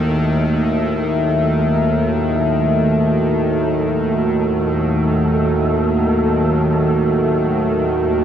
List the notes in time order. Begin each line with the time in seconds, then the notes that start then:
Already playing: D#2 D#3 A3 F#4 A4 E5
7.68 D#5